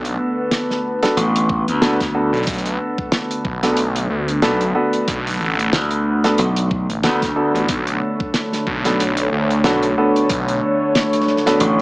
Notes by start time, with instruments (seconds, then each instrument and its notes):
Already playing: detuned saw bass B1, analog synth pad D3 A3 B3, grand piano B3 D4 F#4 A4
0.05 closed hi-hat
0.51 snare, closed hi-hat
0.70 snare
1.03 grand piano B3 D4 F#4 A4, snare, closed hi-hat
1.17 slap bass A1, closed hi-hat
1.36 closed hi-hat
1.49 kick
1.68 slap bass D2, closed hi-hat
1.82 grand piano B3 D4 F#4 A4, snare, closed hi-hat
2.00 kick, snare, closed hi-hat
2.14 grand piano B3 D4 F#4 A4
2.33 detuned saw bass B1, closed hi-hat
2.37 closed hi-hat
2.43 closed hi-hat
2.47 detuned saw bass B1, kick, closed hi-hat
2.53 closed hi-hat
2.58 closed hi-hat
2.65 closed hi-hat
2.98 kick
3.12 snare, closed hi-hat
3.31 closed hi-hat
3.45 detuned saw bass B1, kick
3.63 grand piano B3 D4 F#4 A4, snare, closed hi-hat
3.77 closed hi-hat
3.96 closed hi-hat
4.10 detuned saw bass D2
4.28 closed hi-hat
4.42 detuned saw bass B1, grand piano B3 D4 F#4 A4, snare, closed hi-hat
4.61 closed hi-hat
4.75 grand piano B3 D4 F#4 A4
4.93 closed hi-hat
5.08 detuned saw bass B1, kick, closed hi-hat
5.27 closed hi-hat
5.30 closed hi-hat
5.34 closed hi-hat
5.37 detuned saw bass A1, closed hi-hat
5.41 closed hi-hat
5.45 closed hi-hat
5.50 closed hi-hat
5.54 closed hi-hat
5.59 closed hi-hat
5.73 slap bass D2, snare, closed hi-hat
5.91 closed hi-hat
6.24 grand piano B3 D4 F#4 A4, snare, closed hi-hat
6.38 slap bass B1, closed hi-hat
6.56 closed hi-hat
6.71 kick
6.90 detuned saw bass A1, closed hi-hat
7.03 slap bass D2, grand piano B3 D4 F#4 A4, snare, closed hi-hat
7.22 kick, snare, closed hi-hat
7.36 grand piano B3 D4 F#4 A4
7.54 detuned saw bass A1, closed hi-hat
7.68 detuned saw bass B1, analog synth pad C#5, kick, closed hi-hat
7.87 closed hi-hat
8.20 kick
8.34 snare, closed hi-hat
8.53 snare, closed hi-hat
8.67 detuned saw bass B1, kick
8.85 grand piano B3 D4 F#4 A4, snare, closed hi-hat
9.00 closed hi-hat
9.17 closed hi-hat
9.32 detuned saw bass D2
9.50 closed hi-hat
9.64 detuned saw bass B1, grand piano B3 D4 F#4 A4, snare, closed hi-hat
9.82 closed hi-hat
9.98 grand piano B3 D4 F#4 A4
10.16 closed hi-hat
10.29 detuned saw bass B1, kick, closed hi-hat
10.48 closed hi-hat
10.95 snare, closed hi-hat
11.13 snare, closed hi-hat
11.20 snare
11.27 snare
11.37 snare
11.46 grand piano B3 D4 F#4 A4, snare, closed hi-hat
11.60 slap bass A1, closed hi-hat